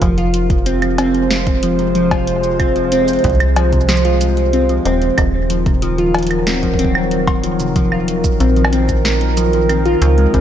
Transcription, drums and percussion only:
0.02 kick loud
0.02 closed hi-hat medium
0.18 closed hi-hat soft
0.34 closed hi-hat loud
0.50 kick loud
0.50 closed hi-hat soft
0.66 closed hi-hat medium
0.82 closed hi-hat soft
0.82 claves medium
0.98 closed hi-hat medium
0.98 cowbell medium
1.14 closed hi-hat soft
1.31 snare loud
1.31 closed hi-hat medium
1.47 kick loud
1.47 closed hi-hat soft
1.63 closed hi-hat loud
1.79 closed hi-hat soft
1.95 closed hi-hat medium
2.11 kick loud
2.11 closed hi-hat soft
2.11 cowbell medium
2.27 closed hi-hat loud
2.44 closed hi-hat soft
2.44 cabasa medium
2.60 kick loud
2.60 closed hi-hat medium
2.60 claves medium
2.76 closed hi-hat soft
2.92 closed hi-hat loud
3.08 closed hi-hat soft
3.08 cabasa medium
3.13 closed hi-hat soft
3.19 closed hi-hat soft
3.24 kick loud
3.24 closed hi-hat medium
3.30 closed hi-hat soft
3.35 closed hi-hat soft
3.40 closed hi-hat soft
3.40 claves medium
3.56 closed hi-hat loud
3.56 cowbell medium
3.73 kick medium
3.73 closed hi-hat soft
3.73 cabasa soft
3.81 cabasa soft
3.89 snare loud
3.89 closed hi-hat medium
3.89 cabasa medium
3.97 cabasa medium
4.05 closed hi-hat soft
4.21 closed hi-hat loud
4.21 cabasa medium
4.37 closed hi-hat soft
4.53 closed hi-hat medium
4.69 closed hi-hat soft
4.85 closed hi-hat loud
5.02 closed hi-hat soft
5.18 kick loud
5.18 closed hi-hat medium
5.18 claves medium
5.50 closed hi-hat loud
5.66 kick loud
5.66 closed hi-hat soft
5.82 closed hi-hat medium
5.98 closed hi-hat soft
6.14 closed hi-hat soft
6.14 cowbell medium
6.19 closed hi-hat medium
6.23 closed hi-hat medium
6.27 closed hi-hat medium
6.31 closed hi-hat soft
6.31 claves medium
6.47 snare loud
6.47 closed hi-hat medium
6.63 kick soft
6.63 closed hi-hat soft
6.74 kick medium
6.79 closed hi-hat loud
6.84 kick medium
6.95 claves medium
7.11 closed hi-hat medium
7.27 kick loud
7.27 closed hi-hat soft
7.27 cowbell medium
7.44 closed hi-hat medium
7.60 closed hi-hat soft
7.60 cabasa medium
7.76 kick loud
7.76 closed hi-hat medium
7.92 claves soft
8.08 closed hi-hat loud
8.24 kick loud
8.24 cabasa medium
8.40 closed hi-hat medium
8.56 closed hi-hat soft
8.65 cowbell medium
8.65 claves medium
8.73 closed hi-hat medium
8.89 kick medium
8.89 closed hi-hat soft
8.89 cabasa medium
9.05 snare loud
9.05 closed hi-hat medium
9.21 closed hi-hat soft
9.37 closed hi-hat medium
9.37 cabasa medium
9.53 closed hi-hat soft
9.69 closed hi-hat medium
9.69 claves soft
9.86 closed hi-hat soft
10.02 closed hi-hat medium
10.18 closed hi-hat soft
10.34 kick loud
10.34 closed hi-hat medium

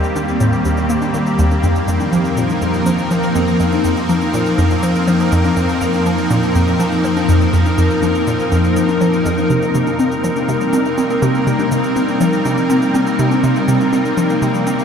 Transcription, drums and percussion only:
0.04 cabasa soft
0.16 high conga medium
0.16 cabasa medium
0.28 cabasa soft
0.40 cabasa medium
0.53 cabasa soft
0.65 high conga soft
0.65 cabasa medium
0.77 cabasa soft
0.90 cabasa medium
1.02 high conga medium
1.02 cabasa soft
1.14 cabasa medium
1.26 cabasa soft
1.39 cabasa medium
1.51 high conga soft
1.51 cabasa soft
1.63 high conga soft
1.63 cabasa medium
1.76 cabasa soft
1.88 cabasa medium
2.00 high conga medium
2.00 cabasa soft
2.13 cabasa medium
2.25 cabasa soft
2.37 cabasa medium
2.50 high conga soft
2.50 cabasa soft
2.62 cabasa medium
2.74 cabasa soft
2.86 high conga medium
2.86 cabasa medium
2.99 cabasa soft
3.11 cabasa medium
3.23 cabasa soft
3.35 high conga soft
3.35 cabasa medium
3.48 cabasa soft
3.60 cabasa medium
3.72 high conga medium
3.72 cabasa soft
3.84 cabasa medium
3.97 cabasa soft
4.09 cabasa medium
4.21 high conga soft
4.21 cabasa soft
4.34 cabasa medium
4.46 cabasa soft
4.58 high conga medium
4.58 cabasa medium
4.71 cabasa soft
4.83 cabasa medium
4.95 cabasa soft
5.08 high conga soft
5.08 cabasa medium
5.20 cabasa soft
5.32 cabasa medium
5.44 high conga medium
5.44 cabasa soft
5.57 cabasa medium
5.69 cabasa soft
5.81 cabasa medium
5.94 high conga soft
5.94 cabasa soft
6.06 cabasa medium
6.18 cabasa soft
6.30 high conga medium
6.30 cabasa medium
6.43 cabasa soft
6.55 cabasa medium
6.67 cabasa soft
6.80 high conga soft
6.80 cabasa medium
6.92 cabasa soft
7.04 cabasa medium
7.17 high conga medium
7.17 cabasa soft
7.29 cabasa medium
7.41 cabasa soft
7.53 cabasa medium
7.66 high conga soft
7.66 cabasa soft
7.78 cabasa medium
7.90 cabasa soft
8.03 high conga medium
8.03 cabasa medium
8.15 cabasa soft
8.27 cabasa medium
8.40 cabasa soft
8.52 high conga soft
8.52 cabasa medium
8.64 cabasa soft
8.76 cabasa medium
8.89 high conga medium
8.89 cabasa soft
9.01 cabasa medium
9.13 cabasa soft
9.26 cabasa medium
9.38 high conga soft
9.38 cabasa soft
9.50 high conga soft
9.50 cabasa medium
9.62 cabasa soft
9.75 cabasa medium
9.87 high conga medium
9.87 cabasa soft
9.99 cabasa medium
10.12 cabasa soft
10.24 cabasa medium
10.36 high conga soft
10.36 cabasa soft
10.49 cabasa medium
10.61 cabasa soft
10.73 high conga medium
10.73 cabasa medium
10.85 cabasa soft
10.98 cabasa medium
11.10 cabasa soft
11.22 high conga soft
11.22 cabasa medium
11.35 cabasa soft
11.47 cabasa medium
11.59 high conga medium
11.59 cabasa soft
11.72 cabasa loud
11.84 cabasa soft
11.96 cabasa medium
12.08 high conga soft
12.08 cabasa soft
12.21 cabasa medium
12.33 cabasa soft
12.45 high conga medium
12.45 cabasa medium
12.58 cabasa soft
12.70 cabasa medium
12.82 cabasa soft
12.95 high conga soft
12.95 cabasa medium
13.07 cabasa soft
13.19 cabasa medium
13.31 high conga medium
13.31 cabasa soft
13.44 cabasa medium
13.56 cabasa soft
13.68 cabasa medium
13.81 high conga soft
13.81 cabasa soft
13.93 cabasa medium
14.05 cabasa soft
14.17 high conga medium
14.17 cabasa medium
14.30 cabasa soft
14.42 cabasa medium
14.55 cabasa soft
14.67 high conga soft
14.67 cabasa medium
14.79 cabasa soft

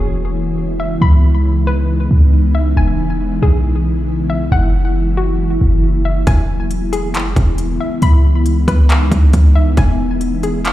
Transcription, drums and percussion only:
6.27 kick loud
6.27 closed hi-hat medium
6.71 closed hi-hat medium
6.93 closed hi-hat medium
7.14 clap loud
7.14 closed hi-hat medium
7.36 kick medium
7.36 closed hi-hat medium
7.58 closed hi-hat medium
8.02 closed hi-hat medium
8.46 closed hi-hat medium
8.68 kick medium
8.68 closed hi-hat medium
8.90 clap loud
8.90 closed hi-hat medium
9.12 kick medium
9.12 closed hi-hat medium
9.33 kick medium
9.33 closed hi-hat medium
9.77 kick loud
9.77 closed hi-hat medium
10.21 closed hi-hat medium
10.43 closed hi-hat medium
10.65 clap loud
10.65 closed hi-hat medium

